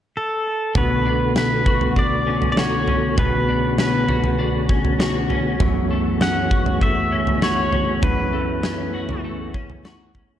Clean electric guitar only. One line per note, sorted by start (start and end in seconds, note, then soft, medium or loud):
0.75 3.17 B2 medium
1.05 1.95 D4 medium
1.66 2.57 F#4 medium
1.97 3.47 D4 medium
2.27 2.87 C#4 medium
2.57 4.08 F#4 medium
2.88 3.78 C#4 medium
3.18 5.60 B2 medium
3.48 4.38 D4 medium
3.78 4.69 C#4 soft
4.08 4.99 F#4 medium
4.39 5.66 D4 medium
4.69 5.29 C#4 soft
4.99 6.51 F#4 medium
5.30 6.21 C#4 medium
5.60 8.02 F#2 medium
5.91 6.81 A3 medium
6.21 7.12 C#4 medium
6.51 7.42 F#4 medium
6.82 8.32 A3 medium
7.12 7.72 C#4 medium
7.42 8.93 F#4 medium
7.72 8.63 C#4 medium
8.02 10.39 F#2 medium
8.33 9.24 A3 medium
8.63 9.54 C#4 medium
8.94 9.84 F#4 medium
9.24 10.39 A3 medium
9.54 10.15 C#4 soft
9.85 10.39 F#4 medium
10.15 10.39 C#4 soft